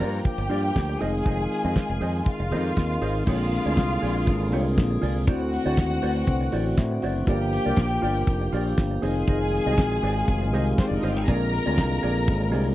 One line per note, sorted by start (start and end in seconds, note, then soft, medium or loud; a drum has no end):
0.00 0.19 G2 medium
0.00 0.99 F3 medium
0.00 0.10 A#3 medium
0.00 0.99 A#3 medium
0.00 0.10 D4 medium
0.00 0.11 F4 medium
0.00 0.20 F4 medium
0.00 0.14 G4 medium
0.00 0.99 G4 medium
0.00 0.23 A#4 medium
0.00 0.12 A#4 loud
0.00 0.11 D5 loud
0.00 0.23 A#5 medium
0.00 open hi-hat medium
0.13 muted clean electric guitar stroke soft
0.24 0.99 G4 medium
0.24 0.98 G5 medium
0.24 muted clean electric guitar stroke soft
0.24 kick loud
0.24 closed hi-hat medium
0.38 0.47 G1 loud
0.38 muted clean electric guitar stroke soft
0.49 0.70 G2 medium
0.49 1.00 A#3 medium
0.49 1.00 D4 medium
0.49 0.70 F4 medium
0.49 1.00 F4 medium
0.49 1.01 G4 medium
0.49 0.63 A#4 medium
0.49 0.62 D5 medium
0.49 open hi-hat medium
0.64 muted clean electric guitar stroke soft
0.76 0.95 D2 medium
0.76 muted clean electric guitar stroke soft
0.76 kick loud
0.76 snare loud
0.76 closed hi-hat medium
0.89 muted clean electric guitar stroke medium
0.99 1.21 F1 loud
0.99 3.24 D#3 medium
0.99 1.86 G#3 medium
0.99 3.24 G#3 medium
0.99 1.86 C4 medium
0.99 1.86 D#4 medium
0.99 3.24 F4 medium
0.99 2.23 G#4 medium
0.99 1.20 G#4 medium
0.99 1.86 G#4 loud
0.99 1.14 C5 medium
0.99 1.13 D#5 loud
0.99 2.23 G#5 loud
0.99 open hi-hat medium
1.14 muted clean electric guitar stroke soft
1.25 1.45 F1 medium
1.25 1.45 G#4 medium
1.25 1.39 C5 medium
1.25 1.39 D#5 medium
1.25 kick loud
1.25 closed hi-hat medium
1.40 muted clean electric guitar stroke soft
1.51 muted clean electric guitar stroke soft
1.51 open hi-hat medium
1.65 1.73 F2 loud
1.65 1.80 G#4 soft
1.65 1.80 C5 soft
1.65 1.79 D#5 medium
1.75 kick loud
1.75 snare loud
1.75 closed hi-hat medium
1.89 1.98 F1 loud
1.89 muted clean electric guitar stroke soft
2.01 2.21 F2 loud
2.01 2.21 G#4 medium
2.01 2.14 C5 medium
2.01 2.14 D#5 medium
2.01 open hi-hat medium
2.15 muted clean electric guitar stroke soft
2.26 3.24 F4 medium
2.26 3.25 F5 medium
2.26 muted clean electric guitar stroke soft
2.26 kick loud
2.26 closed hi-hat medium
2.40 2.53 F1 loud
2.40 muted clean electric guitar stroke medium
2.51 2.71 F2 loud
2.51 3.15 G#3 medium
2.51 3.16 C4 medium
2.51 3.16 D#4 medium
2.51 2.71 G#4 medium
2.51 3.16 A#4 medium
2.51 2.65 C5 medium
2.51 2.65 D#5 medium
2.51 open hi-hat medium
2.66 muted clean electric guitar stroke soft
2.77 2.96 D#2 medium
2.77 muted clean electric guitar stroke soft
2.77 kick loud
2.77 snare loud
2.77 closed hi-hat medium
2.90 muted clean electric guitar stroke soft
3.02 3.21 G#1 medium
3.02 3.22 G#4 medium
3.02 3.16 C5 medium
3.02 3.15 D#5 medium
3.02 open hi-hat medium
3.16 muted clean electric guitar stroke medium
3.26 3.57 A#1 loud
3.26 7.24 D3 medium
3.26 3.59 G#3 medium
3.26 5.26 A#3 medium
3.26 3.59 C4 medium
3.26 3.60 D4 medium
3.26 3.47 F4 medium
3.26 4.99 F4 medium
3.26 3.60 F4 medium
3.26 3.39 G#4 loud
3.26 5.26 G#4 medium
3.26 3.38 D5 loud
3.26 4.98 F5 loud
3.26 kick loud
3.26 crash loud
3.40 muted clean electric guitar stroke medium
3.52 muted clean electric guitar stroke soft
3.52 open hi-hat medium
3.65 3.74 D2 medium
3.65 4.39 G#3 medium
3.65 4.39 C4 medium
3.65 4.40 D4 medium
3.65 3.71 E4 medium
3.65 3.81 F4 soft
3.65 3.80 G#4 medium
3.65 3.80 D5 medium
3.72 4.43 F4 loud
3.77 3.97 C2 medium
3.77 kick loud
3.77 snare loud
3.77 closed hi-hat medium
3.91 muted clean electric guitar stroke soft
4.02 4.29 A#1 medium
4.02 4.22 F4 medium
4.02 4.16 G#4 medium
4.02 4.14 D5 medium
4.02 open hi-hat medium
4.16 muted clean electric guitar stroke soft
4.27 4.53 G#1 loud
4.27 muted clean electric guitar stroke medium
4.27 kick loud
4.27 closed hi-hat medium
4.41 muted clean electric guitar stroke soft
4.52 4.78 C2 loud
4.52 5.17 G#3 medium
4.52 5.17 C4 medium
4.52 5.17 D4 medium
4.52 4.73 F4 medium
4.52 5.17 F4 medium
4.52 4.65 G#4 medium
4.52 4.65 D5 loud
4.52 open hi-hat medium
4.66 muted clean electric guitar stroke soft
4.78 4.97 A#1 medium
4.78 muted clean electric guitar stroke medium
4.78 kick loud
4.78 snare loud
4.78 closed hi-hat medium
4.90 muted clean electric guitar stroke soft
5.02 5.27 C2 medium
5.02 5.22 F4 medium
5.02 5.15 G#4 medium
5.02 5.14 D5 loud
5.02 open hi-hat medium
5.15 muted clean electric guitar stroke soft
5.27 5.57 D2 loud
5.27 5.59 A3 medium
5.27 5.59 C4 medium
5.27 7.26 C4 medium
5.27 5.60 E4 medium
5.27 7.26 F#4 medium
5.27 5.47 F#4 medium
5.27 6.99 F#4 medium
5.27 5.60 F#4 medium
5.27 5.41 C5 medium
5.27 5.40 D5 medium
5.27 6.99 F#5 loud
5.27 kick loud
5.27 closed hi-hat medium
5.41 muted clean electric guitar stroke medium
5.52 muted clean electric guitar stroke medium
5.52 open hi-hat medium
5.65 5.75 D2 medium
5.65 6.40 A3 medium
5.65 6.40 C4 medium
5.65 6.40 E4 medium
5.65 5.81 F#4 soft
5.65 6.41 F#4 loud
5.65 5.81 C5 medium
5.65 5.80 D5 medium
5.77 5.97 D#2 loud
5.77 kick loud
5.77 snare loud
5.77 closed hi-hat medium
5.91 muted clean electric guitar stroke medium
6.02 6.22 D2 medium
6.02 6.22 F#4 loud
6.02 6.25 B4 medium
6.02 6.15 C5 loud
6.02 6.15 D5 loud
6.02 open hi-hat medium
6.16 muted clean electric guitar stroke soft
6.27 6.47 C2 medium
6.27 6.51 C5 medium
6.27 muted clean electric guitar stroke soft
6.27 kick loud
6.27 closed hi-hat medium
6.41 muted clean electric guitar stroke soft
6.51 6.72 A1 medium
6.51 7.16 A3 medium
6.51 7.17 C4 medium
6.51 7.17 E4 medium
6.51 6.72 F#4 medium
6.51 7.17 F#4 medium
6.51 6.66 C5 medium
6.51 6.76 D5 medium
6.51 6.65 D5 loud
6.51 open hi-hat medium
6.67 muted clean electric guitar stroke soft
6.77 6.97 A2 loud
6.77 7.01 E5 medium
6.77 muted clean electric guitar stroke medium
6.77 kick loud
6.77 snare loud
6.77 closed hi-hat medium
6.91 muted clean electric guitar stroke soft
7.02 7.23 F#1 medium
7.02 7.23 F#4 medium
7.02 7.16 C5 medium
7.02 7.15 D5 medium
7.02 7.26 F#5 medium
7.02 open hi-hat medium
7.16 muted clean electric guitar stroke medium
7.27 7.57 G1 loud
7.27 9.02 F3 medium
7.27 7.59 A#3 medium
7.27 9.02 A#3 medium
7.27 7.60 D4 medium
7.27 7.60 F4 medium
7.27 7.48 F4 medium
7.27 7.60 G4 loud
7.27 8.75 G4 loud
7.27 9.02 G4 medium
7.27 7.40 A#4 medium
7.27 7.40 D5 loud
7.27 8.75 G5 loud
7.27 kick loud
7.27 closed hi-hat medium
7.41 muted clean electric guitar stroke medium
7.53 muted clean electric guitar stroke soft
7.53 open hi-hat medium
7.65 7.75 C2 medium
7.65 8.40 A#3 loud
7.65 8.40 D4 medium
7.65 8.41 F4 medium
7.65 7.81 F4 soft
7.65 7.81 A#4 medium
7.65 8.41 A#4 loud
7.65 7.81 D5 medium
7.76 7.97 A#1 loud
7.76 kick loud
7.76 snare loud
7.76 closed hi-hat medium
7.91 muted clean electric guitar stroke medium
8.02 8.22 G1 loud
8.02 8.22 F4 loud
8.02 8.16 A#4 medium
8.02 8.15 D5 loud
8.02 open hi-hat medium
8.16 muted clean electric guitar stroke soft
8.27 8.47 F1 medium
8.27 muted clean electric guitar stroke soft
8.27 kick loud
8.27 closed hi-hat medium
8.41 muted clean electric guitar stroke soft
8.52 8.72 A#1 loud
8.52 9.03 A#3 medium
8.52 9.03 D4 medium
8.52 8.73 F4 medium
8.52 9.03 F4 medium
8.52 9.04 G4 loud
8.52 8.66 A#4 loud
8.52 8.65 D5 loud
8.52 open hi-hat medium
8.66 muted clean electric guitar stroke medium
8.78 8.98 G1 loud
8.78 muted clean electric guitar stroke soft
8.78 kick loud
8.78 snare loud
8.78 closed hi-hat medium
8.91 muted clean electric guitar stroke soft
9.02 9.22 F1 medium
9.02 11.27 D#3 medium
9.02 9.56 G#3 medium
9.02 11.27 G#3 medium
9.02 9.56 C4 medium
9.02 9.56 D#4 medium
9.02 11.27 F4 medium
9.02 9.23 G#4 medium
9.02 10.70 G#4 loud
9.02 9.57 G#4 loud
9.02 9.16 C5 medium
9.02 9.15 D#5 medium
9.02 10.70 G#5 loud
9.02 open hi-hat medium
9.16 muted clean electric guitar stroke medium
9.27 9.58 F1 loud
9.27 9.48 G#4 medium
9.27 9.41 C5 loud
9.27 9.40 D#5 loud
9.27 kick loud
9.27 closed hi-hat medium
9.41 muted clean electric guitar stroke soft
9.53 muted clean electric guitar stroke soft
9.53 open hi-hat medium
9.66 9.78 C2 medium
9.66 10.40 G#3 medium
9.66 10.41 C4 medium
9.66 10.41 D#4 medium
9.66 9.72 F#4 medium
9.66 9.82 G#4 medium
9.66 9.82 C5 soft
9.66 9.81 D#5 medium
9.73 10.44 G#4 loud
9.78 9.97 A#1 medium
9.78 kick loud
9.78 snare loud
9.78 closed hi-hat medium
9.92 muted clean electric guitar stroke medium
10.03 10.23 G#1 medium
10.03 10.23 G#4 medium
10.03 10.16 C5 medium
10.03 10.16 D#5 medium
10.03 open hi-hat medium
10.17 muted clean electric guitar stroke soft
10.28 10.53 F1 medium
10.28 muted clean electric guitar stroke soft
10.28 kick loud
10.28 closed hi-hat medium
10.42 muted clean electric guitar stroke soft
10.53 10.72 C2 loud
10.53 11.17 G#3 medium
10.53 11.18 C4 medium
10.53 11.18 D#4 medium
10.53 11.18 G4 medium
10.53 10.73 G#4 medium
10.53 10.67 C5 medium
10.53 10.66 D#5 loud
10.53 open hi-hat medium
10.67 muted clean electric guitar stroke medium
10.78 10.87 C4 medium
10.78 10.87 C5 medium
10.78 muted clean electric guitar stroke soft
10.78 kick loud
10.78 snare loud
10.78 closed hi-hat medium
10.86 10.95 D4 medium
10.86 10.95 D5 medium
10.91 11.00 F1 medium
10.91 muted clean electric guitar stroke soft
10.96 11.04 D#4 medium
10.96 11.04 D#5 medium
11.03 11.16 G1 medium
11.03 11.12 F4 medium
11.03 11.23 G#4 medium
11.03 11.15 C5 medium
11.03 11.15 D#5 medium
11.03 11.12 F5 medium
11.03 open hi-hat medium
11.12 11.20 G4 medium
11.12 11.20 G5 medium
11.16 11.25 G#1 medium
11.16 11.28 G#5 loud
11.16 muted clean electric guitar stroke soft
11.20 11.28 G#4 loud
11.27 11.58 A#1 loud
11.27 12.75 D3 medium
11.27 11.60 G#3 medium
11.27 12.75 G#3 medium
11.27 12.75 A#3 medium
11.27 11.60 C4 medium
11.27 11.61 D4 medium
11.27 11.48 F4 medium
11.27 11.61 F4 medium
11.27 11.40 G#4 loud
11.27 12.75 A#4 loud
11.27 11.39 D5 loud
11.27 12.75 A#5 loud
11.27 kick loud
11.27 closed hi-hat medium
11.40 muted clean electric guitar stroke soft
11.53 muted clean electric guitar stroke soft
11.53 open hi-hat medium
11.66 11.76 D2 medium
11.66 12.40 G#3 medium
11.66 12.41 C4 medium
11.66 12.41 D4 medium
11.66 12.41 F4 loud
11.66 11.82 F4 soft
11.66 11.81 G#4 medium
11.66 11.81 D5 medium
11.77 11.98 C2 medium
11.77 kick loud
11.77 snare loud
11.77 closed hi-hat medium
11.91 muted clean electric guitar stroke soft
12.03 12.30 A#1 medium
12.03 12.23 F4 medium
12.03 12.16 G#4 loud
12.03 12.15 D5 loud
12.03 open hi-hat medium
12.16 muted clean electric guitar stroke soft
12.27 12.54 G#1 loud
12.27 muted clean electric guitar stroke medium
12.27 kick loud
12.27 closed hi-hat medium
12.41 muted clean electric guitar stroke medium
12.52 12.75 C2 medium
12.52 12.75 G#3 medium
12.52 12.75 C4 medium
12.52 12.75 D4 medium
12.52 12.72 F4 medium
12.52 12.75 G4 loud
12.52 12.65 G#4 medium
12.52 12.64 D5 medium
12.52 open hi-hat medium
12.65 muted clean electric guitar stroke medium